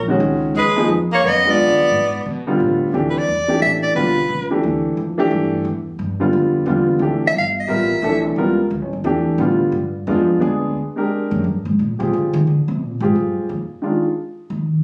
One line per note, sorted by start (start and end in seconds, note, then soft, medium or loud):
0.00 0.19 A#1 loud
0.08 0.53 D#3 medium
0.08 0.53 G#3 medium
0.08 0.53 C#4 medium
0.08 0.53 F#4 medium
0.20 0.54 C#2 loud
0.55 0.88 D#2 medium
0.55 0.88 G#3 medium
0.55 0.89 B4 medium
0.76 0.88 F3 medium
0.76 0.88 A#3 medium
0.76 0.88 D#4 medium
0.76 0.89 G#4 medium
0.89 1.22 F2 medium
1.12 1.25 A#3 medium
1.12 1.29 C#5 loud
1.23 1.56 F#2 medium
1.23 1.46 B3 medium
1.28 1.52 D#5 loud
1.45 1.89 G#3 medium
1.45 1.89 B3 medium
1.45 2.26 B3 medium
1.45 1.90 D4 medium
1.45 1.90 F4 medium
1.50 2.28 D5 medium
1.57 1.69 E2 medium
1.69 1.79 D2 medium
1.80 1.90 B1 medium
1.91 2.24 G#2 medium
2.26 2.58 B2 medium
2.47 2.91 D3 medium
2.47 2.91 G3 medium
2.47 2.91 B3 medium
2.47 2.92 F4 medium
2.60 2.93 A2 medium
2.93 3.27 D2 medium
2.93 3.13 E3 medium
2.93 3.13 A3 medium
2.93 3.13 D4 medium
2.93 3.13 G4 medium
3.10 3.20 B4 medium
3.18 3.62 D5 loud
3.28 3.61 E2 medium
3.48 3.93 E3 medium
3.48 3.93 A3 medium
3.48 3.93 D4 medium
3.48 3.93 G4 medium
3.61 3.94 A1 medium
3.61 3.72 E5 loud
3.83 3.95 D5 medium
3.95 4.28 B1 medium
3.95 4.14 D3 medium
3.95 4.15 G3 medium
3.95 4.15 B3 medium
3.95 4.15 F4 medium
3.95 4.47 B4 medium
4.29 4.62 C#2 medium
4.51 4.95 E3 medium
4.51 4.95 A3 medium
4.51 4.95 D4 medium
4.51 4.95 G4 medium
4.63 4.97 D2 medium
4.97 5.30 F2 medium
5.18 5.63 E3 medium
5.18 5.63 A3 medium
5.18 5.63 D4 medium
5.18 5.63 G4 loud
5.31 5.64 G2 medium
5.65 5.98 E2 medium
5.99 6.32 G2 medium
6.20 6.65 D3 medium
6.20 6.65 G3 medium
6.20 6.65 B3 medium
6.20 6.65 F4 medium
6.33 6.65 F2 medium
6.66 6.99 E2 medium
6.66 7.00 D3 medium
6.66 7.00 G3 medium
6.66 7.00 B3 medium
6.66 7.01 F4 medium
6.99 7.34 D2 medium
6.99 7.20 E3 medium
6.99 7.21 A3 medium
6.99 7.21 D4 medium
6.99 7.21 G4 medium
7.27 7.32 E5 loud
7.34 7.67 G1 medium
7.39 7.48 F5 medium
7.60 8.23 E5 medium
7.68 8.01 A1 medium
7.68 7.88 G3 medium
7.68 7.89 B3 medium
7.68 7.89 F4 medium
7.68 7.89 A#4 medium
8.02 8.36 B1 medium
8.02 8.36 E3 medium
8.02 8.36 A3 medium
8.02 8.37 D4 medium
8.02 8.37 A4 medium
8.36 8.70 C#2 medium
8.36 8.57 G3 medium
8.36 8.57 B3 medium
8.36 8.58 F4 medium
8.36 8.58 A#4 medium
8.70 8.82 D2 medium
8.82 8.92 A1 medium
8.93 9.04 G1 medium
9.04 9.38 E2 medium
9.04 9.38 E3 medium
9.04 9.38 A3 medium
9.04 9.38 D4 medium
9.04 9.39 G4 medium
9.38 9.72 A2 medium
9.38 9.73 D3 medium
9.38 9.74 G3 medium
9.38 9.74 B3 medium
9.38 9.75 F4 medium
9.72 10.06 G2 medium
10.07 10.41 F2 medium
10.07 10.39 G#3 medium
10.07 10.39 B3 medium
10.07 10.40 D4 medium
10.07 10.41 F4 medium
10.40 10.75 D2 loud
10.40 10.75 G#3 medium
10.40 10.75 B3 medium
10.40 10.76 D4 medium
10.40 10.76 G#4 medium
10.96 11.41 G#3 medium
10.96 11.41 D4 medium
10.96 11.42 G4 medium
10.96 11.42 A#4 medium
11.31 11.43 F#2 medium
11.44 11.65 G2 medium
11.65 11.78 G#2 medium
11.79 11.99 A#2 medium
11.99 12.12 C3 medium
11.99 12.44 C4 soft
11.99 12.44 F4 medium
11.99 12.44 G4 medium
11.99 12.44 G#4 medium
12.13 12.33 D3 medium
12.33 12.46 D#3 medium
12.47 12.67 D3 medium
12.68 12.81 C3 medium
12.81 13.00 A#2 medium
13.00 13.13 G#2 medium
13.00 13.46 C4 medium
13.00 13.46 F4 medium
13.00 13.46 G4 medium
13.00 13.47 G#4 medium
13.15 13.37 G2 medium
13.37 13.49 F2 medium
13.49 13.62 D#2 medium
13.82 14.02 D#3 medium
13.82 14.02 G#3 medium
13.82 14.03 D4 medium
13.82 14.03 F4 medium
14.50 14.84 D#3 medium